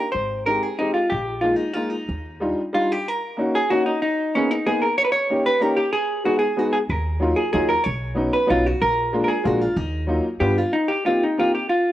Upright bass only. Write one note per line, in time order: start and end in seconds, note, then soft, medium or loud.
0.14 0.57 G#1 medium
1.12 1.54 A#1 medium
2.09 2.52 D#2 medium
6.89 7.32 D#2 medium
7.54 7.75 D#2 medium
7.86 8.28 B1 medium
8.50 8.71 B1 medium
8.82 9.22 A#1 medium
9.45 9.66 A#1 medium
9.76 10.18 D#2 medium
10.41 10.62 G2 medium